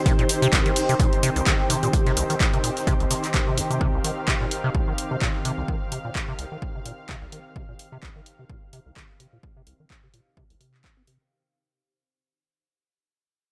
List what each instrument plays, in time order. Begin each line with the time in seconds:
Already playing: analog synth pad D#3 C4 G4 C5, ambient pad D#4 G4 C5 G5
0.06 acid bass C3, kick, closed hi-hat, tambourine, shaker
0.19 acid bass A#2, closed hi-hat
0.29 open hi-hat, tambourine, shaker
0.42 acid bass C3, closed hi-hat, shaker
0.53 acid bass C2, kick, snare, clap, closed hi-hat, tambourine, shaker
0.66 acid bass D#3, closed hi-hat
0.76 open hi-hat, shaker
0.89 acid bass C3, closed hi-hat, shaker
1.00 acid bass A#2, kick, closed hi-hat, tambourine, shaker
1.13 closed hi-hat
1.23 acid bass C3, open hi-hat, tambourine, shaker
1.36 acid bass C2, closed hi-hat, shaker
1.46 acid bass D#3, kick, snare, clap, closed hi-hat, tambourine, shaker
1.70 acid bass C3, open hi-hat, tambourine, shaker
1.83 acid bass A#2, closed hi-hat, shaker
1.93 kick, closed hi-hat, tambourine, shaker
2.06 acid bass C3, snare, closed hi-hat
2.17 acid bass C2, open hi-hat, tambourine, shaker
2.30 acid bass D#3, closed hi-hat, shaker
2.40 kick, snare, clap, closed hi-hat, tambourine, shaker
2.53 acid bass C3, closed hi-hat
2.64 acid bass A#2, open hi-hat, tambourine, shaker
2.77 snare, closed hi-hat, shaker
2.87 acid bass C3, kick, closed hi-hat, tambourine, shaker
3.00 acid bass C2, closed hi-hat
3.10 acid bass C3, open hi-hat, tambourine, shaker
3.24 clap, closed hi-hat, shaker
3.34 acid bass C3, kick, snare, clap, closed hi-hat, tambourine, shaker
3.47 acid bass C3
3.57 acid bass C2, snare, open hi-hat, tambourine, shaker
3.70 acid bass C3, closed hi-hat, shaker
3.81 acid bass C3, analog synth pad F5, kick
3.94 acid bass C2
4.04 acid bass D#3, open hi-hat
4.28 acid bass C3, kick, clap
4.41 acid bass A#2
4.51 open hi-hat
4.64 acid bass C3
4.75 acid bass C2, kick
4.88 acid bass D#3
4.98 ambient pad F5, open hi-hat
5.11 acid bass C3
5.22 acid bass A#2, kick, clap
5.45 acid bass C3, open hi-hat
5.58 acid bass C2
5.68 acid bass D#3, kick
5.92 acid bass C3, open hi-hat
6.05 acid bass A#2
6.15 kick, clap
6.28 acid bass C3
6.39 acid bass C2, open hi-hat
6.52 acid bass D#3
6.62 kick
6.75 acid bass C3
6.86 acid bass A#2, open hi-hat
7.09 acid bass C3, kick, clap
7.22 acid bass C2
7.32 acid bass D#3, open hi-hat
7.56 acid bass C3, kick
7.69 acid bass A#2
7.79 open hi-hat
7.92 acid bass C3
8.03 acid bass C2, kick, clap
8.16 acid bass D#3
8.26 open hi-hat
8.39 acid bass C3
8.50 acid bass A#2, kick
8.73 acid bass C3, open hi-hat
8.86 acid bass C2
8.96 acid bass D#3, kick, clap
9.20 acid bass C3, open hi-hat
9.33 acid bass A#2
9.43 kick
9.57 acid bass C3
9.67 acid bass C2, open hi-hat
9.80 acid bass D#3
9.90 kick, clap
10.03 acid bass C3
10.14 acid bass A#2, open hi-hat
10.37 acid bass C3, kick
10.50 acid bass C2, open hi-hat
10.61 acid bass C3, open hi-hat
10.74 clap
10.84 acid bass C4, kick, clap
10.97 acid bass C4
11.07 acid bass C3, open hi-hat